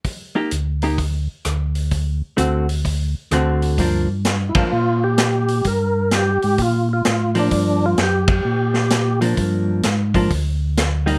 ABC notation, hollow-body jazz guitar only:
X:1
M:4/4
L:1/8
Q:"Swing" 1/4=129
K:Gm
V:1 name="Hollow-body jazz guitar"
z [B,EG] z [B,EG] z4 | z2 [D,A,C^F] z3 [D,A,CF]2 | [F,B,D] z2 [F,B,D] z4 | z6 z [F,B,D]- |
[F,B,D]2 z4 z [F,B,D]- | [F,B,D]2 z [F,B,D] z3 [G,B,E] |]